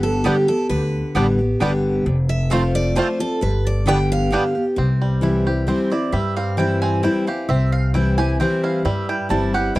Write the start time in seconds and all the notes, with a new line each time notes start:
Already playing: G1 G2 D3 G3 B3 G4
0.03 A4
0.24 D3 G3 B3 D4 G4 D5 G5
0.48 B3 G4 A4
0.69 D2 D3 B4
1.15 A1 D3 G3 B3 D4 G4 D5 G5
1.39 B3 G4
1.60 G1 D3 G3 B3 D4 G4 D5 G5
2.06 F1 F2
2.29 E5
2.50 F3 A3 C4 F4 C5 F5 A5
2.75 D5
2.95 F3 A3 C4 F4 C5 A5
3.19 C4 F4 A4
3.41 G1 G2 B4
3.67 D5
3.86 D3 G3 B3 D4 G4 D5 G5
4.12 F5
4.31 D3 G3 B3 D4 G4 D5 G5
4.55 B3 G4
4.76 C2 C3 C4
5.02 G3
5.21 E3 G3 C4 E4
5.45 C4 E4 G4
5.67 E3 G3 C4 E4 C5
5.90 C4 E4 D5
6.12 G2 G3 E5
6.37 C4 F5
6.57 E3 G3 C4 E4 G5
6.82 C4 G#5
7.03 E3 G3 C4 E4 G5
7.27 C4 E4 G4 F5
7.49 C2 C3 C4 E5
7.72 F5
7.94 E3 G3 C4 E4 G5
8.18 C4 E4 G4 G#5
8.40 E3 G3 C4 E4 G5
8.64 E4 F5
8.85 G2 G3 E5
9.09 E4 G5
9.29 G1 E3 G3 C4 E4 A5
9.53 E4 G4 F#5
9.75 A1 E3 G3 E4 G5